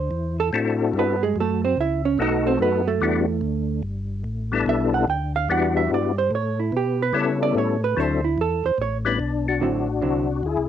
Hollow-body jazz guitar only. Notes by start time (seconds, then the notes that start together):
Already playing: C5
0.40 A4
0.99 B3 B4
1.23 G#3 G#4
1.40 A3 A4
1.65 C4 C5
1.80 E4 E5
2.05 C#4 C#5
2.22 D#4 D#5
2.47 C4 C5
2.62 B3 B4
2.88 A3 A4
4.69 E5
4.94 F#5
5.10 G5
5.36 F5
5.52 F#5
5.77 E5
5.94 D5
6.18 C5
6.35 C#5
6.60 E4
6.77 G4
7.02 B4
7.19 C#5
7.43 D5
7.58 C#5
7.84 B4
8.00 C5
8.24 E4
8.41 A4
8.66 C5
8.81 C#5
9.61 D3 F#3 C4 E4
10.02 D3 F#3 C4 E4